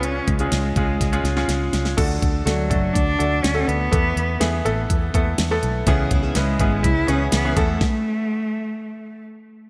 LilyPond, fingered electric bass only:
\new Staff \with { instrumentName = "Fingered electric bass" } { \clef bass \time 4/4 \key e \mixolydian \tempo 4 = 124 cis,8 cis,8 cis,8 cis,8 cis,8 cis,8 cis,8 cis,8 | d,8 d,8 d,8 fis,,8 d,8 d,8 d,8 d,8 | e,8 e,8 e,8 a,,8 e,8 e,8 e,8 b,,8 | cis,8 cis,8 cis,8 gis,,8 cis,8 cis,8 cis,8 e,8 |
r1 | }